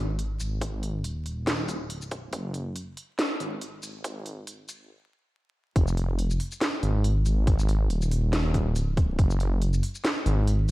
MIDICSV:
0, 0, Header, 1, 3, 480
1, 0, Start_track
1, 0, Tempo, 428571
1, 689, Time_signature, 4, 2, 24, 8
1, 11995, End_track
2, 0, Start_track
2, 0, Title_t, "Detuned saw bass"
2, 0, Program_c, 0, 39
2, 0, Note_on_c, 0, 32, 93
2, 432, Note_off_c, 0, 32, 0
2, 449, Note_on_c, 0, 32, 96
2, 1152, Note_off_c, 0, 32, 0
2, 1168, Note_on_c, 0, 27, 93
2, 2592, Note_off_c, 0, 27, 0
2, 2609, Note_on_c, 0, 30, 99
2, 3312, Note_off_c, 0, 30, 0
2, 3808, Note_on_c, 0, 32, 96
2, 4271, Note_off_c, 0, 32, 0
2, 4288, Note_on_c, 0, 32, 99
2, 4991, Note_off_c, 0, 32, 0
2, 5009, Note_on_c, 0, 32, 92
2, 5489, Note_off_c, 0, 32, 0
2, 6449, Note_on_c, 0, 29, 99
2, 7152, Note_off_c, 0, 29, 0
2, 7650, Note_on_c, 0, 32, 101
2, 8112, Note_off_c, 0, 32, 0
2, 8127, Note_on_c, 0, 32, 97
2, 8831, Note_off_c, 0, 32, 0
2, 8847, Note_on_c, 0, 27, 94
2, 10271, Note_off_c, 0, 27, 0
2, 10290, Note_on_c, 0, 30, 100
2, 10992, Note_off_c, 0, 30, 0
2, 11489, Note_on_c, 0, 32, 93
2, 11952, Note_off_c, 0, 32, 0
2, 11995, End_track
3, 0, Start_track
3, 0, Title_t, "Drums"
3, 210, Note_on_c, 9, 42, 80
3, 322, Note_off_c, 9, 42, 0
3, 451, Note_on_c, 9, 42, 57
3, 451, Note_on_c, 9, 82, 79
3, 563, Note_off_c, 9, 42, 0
3, 563, Note_off_c, 9, 82, 0
3, 688, Note_on_c, 9, 36, 119
3, 689, Note_on_c, 9, 42, 84
3, 800, Note_off_c, 9, 36, 0
3, 801, Note_off_c, 9, 42, 0
3, 929, Note_on_c, 9, 42, 55
3, 1041, Note_off_c, 9, 42, 0
3, 1168, Note_on_c, 9, 42, 81
3, 1280, Note_off_c, 9, 42, 0
3, 1409, Note_on_c, 9, 42, 53
3, 1521, Note_off_c, 9, 42, 0
3, 1648, Note_on_c, 9, 38, 127
3, 1648, Note_on_c, 9, 42, 81
3, 1760, Note_off_c, 9, 38, 0
3, 1760, Note_off_c, 9, 42, 0
3, 1888, Note_on_c, 9, 36, 62
3, 1888, Note_on_c, 9, 42, 54
3, 1888, Note_on_c, 9, 82, 51
3, 2000, Note_off_c, 9, 36, 0
3, 2000, Note_off_c, 9, 42, 0
3, 2000, Note_off_c, 9, 82, 0
3, 2126, Note_on_c, 9, 42, 84
3, 2238, Note_off_c, 9, 42, 0
3, 2260, Note_on_c, 9, 82, 49
3, 2367, Note_on_c, 9, 42, 57
3, 2369, Note_on_c, 9, 36, 110
3, 2372, Note_off_c, 9, 82, 0
3, 2479, Note_off_c, 9, 42, 0
3, 2481, Note_off_c, 9, 36, 0
3, 2606, Note_on_c, 9, 42, 81
3, 2609, Note_on_c, 9, 36, 124
3, 2718, Note_off_c, 9, 42, 0
3, 2721, Note_off_c, 9, 36, 0
3, 2846, Note_on_c, 9, 42, 54
3, 2958, Note_off_c, 9, 42, 0
3, 3087, Note_on_c, 9, 42, 79
3, 3199, Note_off_c, 9, 42, 0
3, 3328, Note_on_c, 9, 42, 52
3, 3440, Note_off_c, 9, 42, 0
3, 3569, Note_on_c, 9, 38, 125
3, 3569, Note_on_c, 9, 42, 82
3, 3681, Note_off_c, 9, 38, 0
3, 3681, Note_off_c, 9, 42, 0
3, 3809, Note_on_c, 9, 42, 54
3, 3921, Note_off_c, 9, 42, 0
3, 4048, Note_on_c, 9, 42, 84
3, 4160, Note_off_c, 9, 42, 0
3, 4289, Note_on_c, 9, 42, 54
3, 4289, Note_on_c, 9, 82, 79
3, 4401, Note_off_c, 9, 42, 0
3, 4401, Note_off_c, 9, 82, 0
3, 4528, Note_on_c, 9, 42, 84
3, 4529, Note_on_c, 9, 36, 124
3, 4640, Note_off_c, 9, 42, 0
3, 4641, Note_off_c, 9, 36, 0
3, 4769, Note_on_c, 9, 42, 53
3, 4881, Note_off_c, 9, 42, 0
3, 5009, Note_on_c, 9, 42, 78
3, 5121, Note_off_c, 9, 42, 0
3, 5249, Note_on_c, 9, 42, 53
3, 5249, Note_on_c, 9, 82, 58
3, 5361, Note_off_c, 9, 42, 0
3, 5361, Note_off_c, 9, 82, 0
3, 6449, Note_on_c, 9, 36, 121
3, 6450, Note_on_c, 9, 42, 86
3, 6561, Note_off_c, 9, 36, 0
3, 6562, Note_off_c, 9, 42, 0
3, 6584, Note_on_c, 9, 82, 55
3, 6689, Note_on_c, 9, 42, 56
3, 6696, Note_off_c, 9, 82, 0
3, 6801, Note_off_c, 9, 42, 0
3, 6929, Note_on_c, 9, 42, 85
3, 7041, Note_off_c, 9, 42, 0
3, 7063, Note_on_c, 9, 82, 60
3, 7168, Note_on_c, 9, 46, 95
3, 7175, Note_off_c, 9, 82, 0
3, 7280, Note_off_c, 9, 46, 0
3, 7300, Note_on_c, 9, 82, 61
3, 7407, Note_on_c, 9, 38, 121
3, 7407, Note_on_c, 9, 42, 85
3, 7412, Note_off_c, 9, 82, 0
3, 7519, Note_off_c, 9, 38, 0
3, 7519, Note_off_c, 9, 42, 0
3, 7648, Note_on_c, 9, 42, 55
3, 7760, Note_off_c, 9, 42, 0
3, 7888, Note_on_c, 9, 42, 82
3, 8000, Note_off_c, 9, 42, 0
3, 8129, Note_on_c, 9, 42, 57
3, 8129, Note_on_c, 9, 82, 53
3, 8241, Note_off_c, 9, 42, 0
3, 8241, Note_off_c, 9, 82, 0
3, 8368, Note_on_c, 9, 36, 123
3, 8368, Note_on_c, 9, 42, 89
3, 8480, Note_off_c, 9, 36, 0
3, 8480, Note_off_c, 9, 42, 0
3, 8503, Note_on_c, 9, 82, 52
3, 8609, Note_on_c, 9, 42, 55
3, 8615, Note_off_c, 9, 82, 0
3, 8721, Note_off_c, 9, 42, 0
3, 8850, Note_on_c, 9, 42, 86
3, 8962, Note_off_c, 9, 42, 0
3, 8982, Note_on_c, 9, 82, 59
3, 9089, Note_on_c, 9, 46, 96
3, 9094, Note_off_c, 9, 82, 0
3, 9201, Note_off_c, 9, 46, 0
3, 9328, Note_on_c, 9, 38, 126
3, 9328, Note_on_c, 9, 42, 87
3, 9440, Note_off_c, 9, 38, 0
3, 9440, Note_off_c, 9, 42, 0
3, 9567, Note_on_c, 9, 42, 57
3, 9569, Note_on_c, 9, 36, 66
3, 9679, Note_off_c, 9, 42, 0
3, 9681, Note_off_c, 9, 36, 0
3, 9809, Note_on_c, 9, 42, 83
3, 9809, Note_on_c, 9, 82, 58
3, 9921, Note_off_c, 9, 42, 0
3, 9921, Note_off_c, 9, 82, 0
3, 10048, Note_on_c, 9, 42, 57
3, 10049, Note_on_c, 9, 36, 107
3, 10160, Note_off_c, 9, 42, 0
3, 10161, Note_off_c, 9, 36, 0
3, 10289, Note_on_c, 9, 36, 125
3, 10289, Note_on_c, 9, 42, 86
3, 10401, Note_off_c, 9, 36, 0
3, 10401, Note_off_c, 9, 42, 0
3, 10423, Note_on_c, 9, 82, 53
3, 10530, Note_on_c, 9, 42, 55
3, 10535, Note_off_c, 9, 82, 0
3, 10642, Note_off_c, 9, 42, 0
3, 10771, Note_on_c, 9, 42, 82
3, 10883, Note_off_c, 9, 42, 0
3, 10905, Note_on_c, 9, 82, 61
3, 11011, Note_on_c, 9, 46, 87
3, 11017, Note_off_c, 9, 82, 0
3, 11123, Note_off_c, 9, 46, 0
3, 11144, Note_on_c, 9, 82, 57
3, 11252, Note_on_c, 9, 38, 124
3, 11252, Note_on_c, 9, 42, 81
3, 11256, Note_off_c, 9, 82, 0
3, 11364, Note_off_c, 9, 38, 0
3, 11364, Note_off_c, 9, 42, 0
3, 11492, Note_on_c, 9, 42, 57
3, 11604, Note_off_c, 9, 42, 0
3, 11731, Note_on_c, 9, 42, 86
3, 11843, Note_off_c, 9, 42, 0
3, 11995, End_track
0, 0, End_of_file